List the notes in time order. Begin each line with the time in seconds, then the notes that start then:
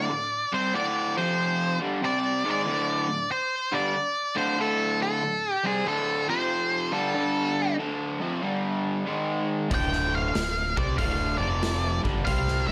Already playing: D3 D5
0.10 D2 A2
0.53 C3 G3 C4 C5
0.74 D2 A2 D3 D5
1.18 F2 C3 F3 C5
1.80 G2 D3 G3
2.02 C3 G3 C4 D5
2.44 G#2 D#3 G#3
2.51 D5
2.66 D2 A2 D3
3.08 D2 A2
3.32 C5
3.72 G2 D3 G3 D5
3.95 muted overdriven electric guitar stroke
4.36 D2 A2 D3 C5
4.58 D2 A2 D3 A4
5.03 A4
5.23 D2 A2
5.53 G4
5.64 C3 G3 C4 G#4
5.85 D2 A2 D3 A4
6.28 F2 C3 F3 C5
6.92 G2 D3 G3 A4
7.14 G2 D3 G3
7.78 D2 A2 D3
8.20 F2 C3 F3
8.42 G2 D3 G3
9.06 G#2 D#3 G#3
9.70 D1 D2 A2 D3, kick, open hi-hat
9.74 G5
9.93 snare
10.15 F5
10.34 D1 D2 A2, snare, open hi-hat
10.77 C2 C3 G3 C4 D5, kick
10.97 D1 D2 A2 D3 F5, kick, open hi-hat
11.38 F1 F2 C3 F3 D5
11.63 snare, open hi-hat
12.02 G1 G2 D3 G3, kick
12.25 C2 C3 G3 C4 F5, kick, open hi-hat
12.48 snare
12.67 G#1 G#2 D#3 F5